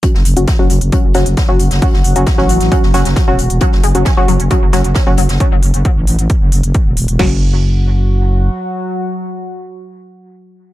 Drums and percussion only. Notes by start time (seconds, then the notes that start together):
0.03 kick, closed hi-hat
0.15 snare
0.25 closed hi-hat, open hi-hat
0.37 closed hi-hat
0.48 kick, snare, closed hi-hat
0.70 closed hi-hat, open hi-hat
0.81 closed hi-hat
0.92 kick, closed hi-hat
1.14 snare, closed hi-hat, open hi-hat
1.26 closed hi-hat
1.37 kick, snare, closed hi-hat
1.60 closed hi-hat, open hi-hat
1.71 snare, closed hi-hat
1.82 kick, closed hi-hat, open hi-hat
1.94 snare
2.04 closed hi-hat, open hi-hat
2.16 closed hi-hat
2.27 kick, snare, closed hi-hat
2.38 snare
2.49 closed hi-hat, open hi-hat
2.60 snare, closed hi-hat
2.72 kick, closed hi-hat
2.83 snare
2.94 snare, closed hi-hat, open hi-hat
3.05 snare, closed hi-hat
3.16 kick, snare, closed hi-hat
3.39 closed hi-hat, open hi-hat
3.50 closed hi-hat
3.61 kick, closed hi-hat
3.72 snare
3.83 closed hi-hat, open hi-hat
3.95 closed hi-hat
4.05 kick, snare, closed hi-hat
4.28 closed hi-hat, open hi-hat
4.40 closed hi-hat
4.51 kick, closed hi-hat
4.72 snare, closed hi-hat, open hi-hat
4.84 closed hi-hat
4.95 kick, snare, closed hi-hat
5.17 closed hi-hat, open hi-hat
5.29 snare, closed hi-hat
5.40 kick, closed hi-hat
5.63 open hi-hat
5.74 closed hi-hat
5.85 kick, closed hi-hat
6.07 open hi-hat
6.19 closed hi-hat
6.30 kick, closed hi-hat
6.52 open hi-hat
6.63 closed hi-hat
6.74 kick, closed hi-hat
6.97 open hi-hat
7.08 closed hi-hat
7.19 kick, snare, crash